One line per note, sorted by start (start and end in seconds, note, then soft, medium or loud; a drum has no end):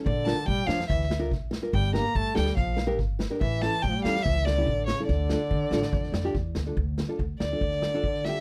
0.04 0.31 A#1 loud
0.04 0.48 D3 medium
0.04 0.27 D5 medium
0.04 kick medium
0.26 0.37 D4 medium
0.26 0.37 F4 medium
0.26 0.37 A#4 medium
0.26 0.47 A5 loud
0.26 snare medium
0.46 0.60 A#2 medium
0.46 0.68 G3 loud
0.46 0.68 G5 medium
0.46 kick medium
0.66 0.80 F2 medium
0.66 0.88 F3 medium
0.66 0.79 D4 medium
0.66 0.78 F4 medium
0.66 0.79 C#5 medium
0.66 0.88 F5 medium
0.66 snare medium
0.80 snare medium
0.88 1.31 D2 medium
0.88 1.08 E3 medium
0.88 1.08 E5 medium
0.88 kick medium
1.01 snare soft
1.10 muted nylon-string guitar stroke medium
1.10 snare medium
1.19 1.30 D4 medium
1.19 1.31 F4 medium
1.19 1.31 A#4 medium
1.31 1.56 A#1 loud
1.31 kick medium
1.31 snare soft
1.51 muted nylon-string guitar stroke medium
1.51 snare medium
1.62 1.73 D4 medium
1.62 1.73 F4 medium
1.62 1.73 A#4 medium
1.73 1.98 G1 loud
1.73 1.95 G3 medium
1.73 1.93 G5 medium
1.73 kick medium
1.84 snare soft
1.93 2.16 A#3 medium
1.93 2.04 D4 medium
1.93 2.04 G4 medium
1.93 2.05 A#4 medium
1.93 2.17 A#5 medium
1.93 snare medium
2.15 2.28 G2 loud
2.15 2.36 A3 medium
2.15 2.36 A5 loud
2.15 kick medium
2.34 2.49 D2 medium
2.34 2.59 G3 medium
2.34 2.46 D4 medium
2.34 2.46 G4 medium
2.34 2.46 A4 medium
2.34 2.56 G5 medium
2.34 snare loud
2.46 snare medium
2.56 2.99 A#1 loud
2.56 2.78 F3 medium
2.56 2.77 F5 medium
2.56 kick medium
2.56 snare soft
2.76 muted nylon-string guitar stroke medium
2.76 snare loud
2.87 2.98 D4 medium
2.87 2.98 G4 medium
2.87 2.98 A#4 medium
2.99 3.24 G1 loud
2.99 kick medium
2.99 snare soft
3.19 muted nylon-string guitar stroke medium
3.19 snare medium
3.30 3.41 D4 medium
3.30 3.41 G4 soft
3.30 3.41 A#4 medium
3.41 3.66 A1 loud
3.41 3.86 E3 medium
3.41 3.63 E5 medium
3.41 kick medium
3.62 3.73 C#4 medium
3.62 3.73 E4 medium
3.62 3.73 A4 medium
3.62 3.83 A5 loud
3.62 snare medium
3.82 3.96 A2 loud
3.82 3.90 G3 medium
3.82 4.03 G5 loud
3.82 kick medium
3.89 3.99 F3 medium
3.97 4.26 G3 medium
4.04 4.17 E2 medium
4.04 4.15 C#4 medium
4.04 4.15 E4 medium
4.04 4.15 A4 medium
4.04 4.24 F5 loud
4.04 snare medium
4.15 snare medium
4.22 4.67 C#2 loud
4.22 4.32 E3 medium
4.22 4.47 E5 loud
4.22 kick medium
4.31 4.38 F3 medium
4.36 4.40 E3 medium
4.36 4.46 E3 medium
4.45 4.89 D3 medium
4.45 4.85 D5 loud
4.45 muted nylon-string guitar stroke medium
4.45 snare medium
4.58 4.67 C#4 medium
4.58 4.68 E4 medium
4.58 4.68 G4 medium
4.67 4.92 A1 loud
4.67 kick medium
4.86 5.10 C#3 medium
4.86 5.06 C#5 medium
4.86 muted nylon-string guitar stroke medium
4.86 snare medium
4.99 5.10 C#4 medium
4.99 5.10 E4 medium
4.99 5.10 A4 medium
4.99 snare soft
5.06 5.34 D2 loud
5.06 6.35 D3 medium
5.06 6.30 D5 medium
5.06 kick medium
5.06 snare soft
5.29 5.40 D4 medium
5.29 5.41 F4 medium
5.29 5.41 A4 medium
5.29 snare medium
5.40 snare soft
5.51 5.63 D3 loud
5.51 kick medium
5.71 5.84 A1 medium
5.71 5.83 D4 loud
5.71 5.83 F4 medium
5.71 5.83 A4 loud
5.71 snare medium
5.82 snare medium
5.93 6.12 F2 medium
5.93 kick medium
6.03 snare soft
6.12 6.32 F2 medium
6.12 muted nylon-string guitar stroke medium
6.12 snare loud
6.24 6.35 D4 medium
6.24 6.35 F4 medium
6.24 6.35 G4 medium
6.24 snare soft
6.34 6.54 E2 medium
6.34 kick medium
6.34 snare soft
6.55 6.74 D2 medium
6.55 muted nylon-string guitar stroke medium
6.55 snare medium
6.66 6.77 D4 medium
6.66 6.77 F4 medium
6.66 6.77 A4 medium
6.77 7.02 D2 loud
6.77 kick medium
6.98 muted nylon-string guitar stroke medium
6.98 snare medium
7.08 7.19 D4 medium
7.08 7.19 F4 medium
7.08 7.19 A4 medium
7.19 7.32 D2 medium
7.19 kick medium
7.39 7.53 D2 medium
7.39 8.40 D3 medium
7.39 8.26 D5 medium
7.39 muted nylon-string guitar stroke medium
7.39 snare medium
7.52 7.62 D4 medium
7.52 7.62 F4 soft
7.52 7.62 A4 medium
7.61 7.86 D2 medium
7.61 kick medium
7.71 snare soft
7.82 muted nylon-string guitar stroke medium
7.82 snare medium
7.94 8.04 D4 medium
7.94 8.04 F4 medium
7.94 8.04 A4 medium
8.03 8.29 D3 medium
8.03 kick medium
8.14 snare soft
8.25 8.37 D4 medium
8.25 8.37 F4 medium
8.25 8.37 G4 medium
8.25 8.40 E5 loud
8.25 snare medium
8.36 snare soft